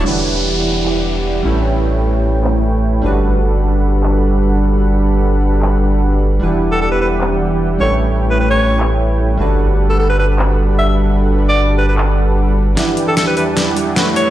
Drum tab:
HH |--------------------------------|------------------------x-------|--------x---x---x---x---x---xx--|x---x---x---x---x---x---x---xx--|
CP |----------------x---------------|----------------x---------------|----------------x---------------|----------------x---------------|
SD |--------------------------------|--------------------------------|--------------------------------|--------------------------------|

HH |----x-----------x---x---x-------|----x---------------x---x---xx--|x---x---x-------x---x---x---xx--|x---x---x---x---x---x---x---xx--|
CP |----------------x---------------|----------------x---------------|----------------x---------------|----------------x---------------|
SD |--------------------------------|--------------------------------|--------------------------------|--------------------------------|

HH |x---x---x---x---x---x---x---x---|
CP |--------------------------------|
SD |o-------o-------o-------o-------|